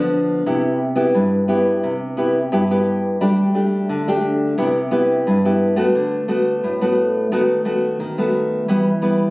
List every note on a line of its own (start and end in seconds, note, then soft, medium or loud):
0.00 0.43 D3 medium
0.00 0.41 F3 medium
0.00 0.41 B3 medium
0.00 0.41 D4 medium
0.46 1.12 C3 medium
0.46 0.79 B3 medium
0.46 0.79 E4 medium
0.46 0.79 G4 medium
0.96 1.43 B3 medium
0.96 1.43 E4 medium
0.96 1.43 G4 medium
1.15 1.80 G2 medium
1.48 1.93 B3 medium
1.48 1.93 E4 medium
1.48 1.93 G4 medium
1.84 2.49 C3 medium
2.17 2.38 B3 medium
2.17 2.38 E4 medium
2.17 2.38 G4 medium
2.52 3.17 G2 medium
2.52 2.62 B3 medium
2.52 2.63 E4 medium
2.52 2.63 G4 medium
2.71 3.16 B3 medium
2.71 3.16 E4 medium
2.71 3.16 G4 medium
3.21 3.86 G3 medium
3.21 3.50 A3 soft
3.21 3.50 D4 medium
3.21 3.50 G4 medium
3.54 4.01 A3 medium
3.54 4.01 D4 medium
3.54 4.01 G4 medium
3.89 4.54 D3 medium
4.07 4.53 A3 medium
4.07 4.53 D4 medium
4.07 4.53 G4 medium
4.58 5.23 C3 medium
4.58 4.78 B3 medium
4.58 4.78 E4 medium
4.58 4.78 G4 medium
4.91 5.37 B3 medium
4.91 5.38 E4 medium
4.91 5.38 G4 medium
5.27 5.92 G2 medium
5.45 5.73 B3 soft
5.45 5.73 E4 medium
5.45 5.73 G4 medium
5.76 6.23 A3 medium
5.76 6.23 B3 medium
5.76 6.23 F#4 medium
5.95 6.60 D3 medium
6.28 6.74 A3 medium
6.28 6.75 B3 medium
6.28 6.75 F#4 medium
6.64 7.28 A2 medium
6.81 7.27 A3 medium
6.81 7.27 B3 medium
6.81 7.27 F#4 medium
7.32 7.97 D#3 medium
7.32 7.60 A3 medium
7.32 7.61 B3 medium
7.32 7.61 F#4 medium
7.65 7.97 A3 medium
7.65 7.98 B3 medium
7.65 7.98 F#4 medium
8.00 8.65 D#3 medium
8.18 8.63 A3 medium
8.18 8.64 B3 medium
8.18 8.64 F#4 medium
8.68 9.30 E3 medium
8.68 8.89 G3 medium
8.68 8.89 B3 medium
8.68 8.89 E4 medium
9.02 9.30 G3 medium
9.02 9.30 B3 medium
9.02 9.30 E4 medium